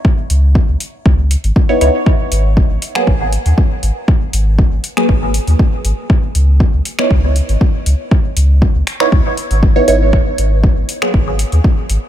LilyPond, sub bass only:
\new Staff \with { instrumentName = "Sub bass" } { \clef bass \time 4/4 \key cis \dorian \tempo 4 = 119 r8 cis,8 r16 cis,16 r8 cis,8 r16 gis,,16 r8 cis,16 r16 | r8 gis,,8 r16 gis,,16 r8 gis,,8 r16 dis,16 r8 gis,,16 r16 | r8 gis,,8 r16 gis,,16 r8 gis,,8 r16 dis,16 r8 gis,,16 r16 | r8 cis,8 r16 cis,16 r8 cis,8 r16 gis,,16 r8 cis,16 r16 |
r8 cis,8 r16 cis,16 r8 cis,16 r8 gis,,8 r16 gis,,8 | r8 gis,,8 r16 gis,,16 r8 gis,,8 r16 dis,16 r8 gis,,16 r16 | }